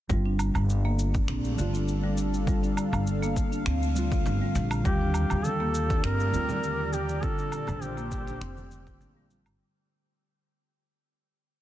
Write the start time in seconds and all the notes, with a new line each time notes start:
0.09 G1 D3 G3 C4, kick, cabasa
0.13 F4
0.26 D4 A4
0.39 cabasa, low woodblock
0.51 D4, low woodblock
0.55 G1, cabasa
0.70 cabasa
0.85 A#3
0.99 cabasa
1.14 D4, kick, cabasa
1.24 C4 F5, finger snap
1.29 A#1, cabasa
1.44 A3, cabasa
1.57 G1 D3 G3 C4, cabasa
1.61 F4
1.74 F4, cabasa
1.88 cabasa
2.04 G3
2.18 cabasa
2.34 cabasa
2.45 D3 G3 C4, kick, cabasa
2.49 F4
2.63 D4, cabasa
2.77 cabasa, low woodblock
2.93 G1, cabasa, low woodblock
3.07 cabasa
3.22 A#3, cabasa
3.36 kick, cabasa
3.52 D4, cabasa
3.66 D2 C4, finger snap, cabasa
3.82 A3, cabasa
3.94 D3 G3 C4, cabasa
3.98 F4
4.12 F4, kick, cabasa
4.25 G1, cabasa
4.42 G3
4.55 A#1, cabasa
4.71 cabasa, low woodblock
4.83 D#2 D3 G3 C4 G4, kick, cabasa
4.87 F4
4.99 D4 G4
5.14 muted conga, cabasa, low woodblock
5.23 D5
5.30 D#2, cabasa, low woodblock
5.44 A4, high conga, cabasa
5.60 A#3
5.75 cabasa
5.90 D4, kick, muted conga, high conga, cabasa
6.04 G2 C4 A#4, finger snap, cabasa
6.19 A3, cabasa
6.32 D#2 D3 G3 C4 F4, cabasa
6.49 F4, low conga, cabasa
6.64 cabasa
6.79 G3
6.93 G4, high conga, cabasa
7.09 high conga, cabasa
7.21 A#2 D3 G3 C4 A4, kick, cabasa
7.25 F4
7.38 D4, cabasa
7.45 C5
7.52 muted conga, cabasa, low woodblock
7.67 A#1, low conga, cabasa, low woodblock
7.82 G4, high conga, cabasa
7.97 A#3, cabasa
8.12 kick, low conga, cabasa
8.27 D4, muted conga, high conga, cabasa
8.41 F1 C4, finger snap, cabasa
8.57 A3, high conga, cabasa
8.71 D3, muted conga, cabasa
8.87 F4, kick, cabasa
9.01 A#1, cabasa
9.16 G3
9.30 D3 G3 C4 F4, cabasa
9.46 G1, cabasa, low woodblock